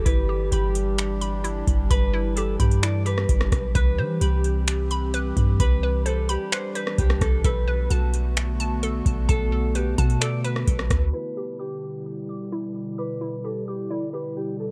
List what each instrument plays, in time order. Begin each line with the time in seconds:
Already playing: ambient pad G3 G4
0.05 808-style bass G1, ambient pad E3 D4, synth pluck E4, clean electric guitar B4, kick, closed hi-hat
0.29 synth pluck G4
0.52 808-style bass G1, clean electric guitar G4, synth pluck B5, closed hi-hat
0.75 closed hi-hat
0.98 finger snap, closed hi-hat
1.21 synth pluck B5, closed hi-hat
1.44 synth pluck E4, closed hi-hat
1.67 808-style bass G1, kick, closed hi-hat
1.91 808-style bass G1, clean electric guitar B4, synth pluck B5, kick, closed hi-hat
2.13 synth pluck E4
2.36 synth pluck G4, clean electric guitar A4, closed hi-hat
2.60 808-style bass G2, clean electric guitar G4, synth pluck B5, kick, closed hi-hat, open hi-hat
2.71 closed hi-hat
2.83 synth pluck E4, clean electric guitar D5, finger snap, closed hi-hat
3.06 synth pluck G4, clean electric guitar B4, closed hi-hat
3.18 cross-stick
3.29 808-style bass G1, kick, closed hi-hat
3.41 cross-stick
3.52 808-style bass B1, kick, cross-stick, closed hi-hat
3.75 808-style bass C2, ambient pad C4 G4, synth pluck B4, clean electric guitar B4, kick, closed hi-hat
3.98 808-style bass E3, synth pluck C5
4.21 808-style bass C2, clean electric guitar G4, synth pluck B5, closed hi-hat
4.44 closed hi-hat
4.68 finger snap, closed hi-hat
4.91 synth pluck B5, closed hi-hat
5.14 synth pluck B4, closed hi-hat
5.37 808-style bass G2, kick, closed hi-hat
5.60 808-style bass C2, ambient pad D4, clean electric guitar B4, synth pluck B5, kick, closed hi-hat
5.83 synth pluck B4
6.06 clean electric guitar A4, synth pluck C5, closed hi-hat
6.29 clean electric guitar G4, synth pluck B5, closed hi-hat
6.52 synth pluck B4, clean electric guitar C5, finger snap, closed hi-hat
6.75 clean electric guitar B4, synth pluck C5, closed hi-hat
6.87 cross-stick
6.98 808-style bass C2, clean electric guitar G4, kick, closed hi-hat
7.10 cross-stick
7.21 808-style bass C2, clean electric guitar A4, kick, cross-stick, closed hi-hat
7.44 808-style bass B1, ambient pad D3 A3 B3 F#4, synth pluck A4, clean electric guitar B4, kick, closed hi-hat
7.68 synth pluck B4
7.90 808-style bass B1, clean electric guitar F#4, synth pluck A5, closed hi-hat
8.14 closed hi-hat
8.37 finger snap, closed hi-hat
8.60 synth pluck A5, closed hi-hat
8.83 synth pluck A4, closed hi-hat
9.06 808-style bass B1, kick, closed hi-hat
9.29 808-style bass B1, clean electric guitar A4, synth pluck A5, kick, closed hi-hat
9.52 synth pluck A4
9.75 clean electric guitar G4, synth pluck B4, closed hi-hat
9.98 808-style bass B2, clean electric guitar F#4, synth pluck A5, kick, closed hi-hat, open hi-hat
10.10 closed hi-hat
10.21 synth pluck A4, clean electric guitar D5, finger snap, closed hi-hat
10.44 clean electric guitar B4, synth pluck B4, closed hi-hat
10.56 cross-stick
10.68 808-style bass B1, kick, closed hi-hat
10.79 cross-stick
10.90 808-style bass D2, kick, cross-stick, closed hi-hat
11.13 ambient pad B2 D3 G3 E4, synth pluck E4, clean electric guitar B4
11.37 synth pluck G4
11.59 clean electric guitar G4, synth pluck D6
12.29 synth pluck D6
12.52 synth pluck E4
12.98 clean electric guitar B4, synth pluck D6
13.21 synth pluck E4
13.44 synth pluck G4, clean electric guitar A4
13.68 clean electric guitar G4, synth pluck D6
13.90 synth pluck E4, clean electric guitar D5
14.13 synth pluck G4, clean electric guitar B4
14.37 clean electric guitar G4
14.60 clean electric guitar A4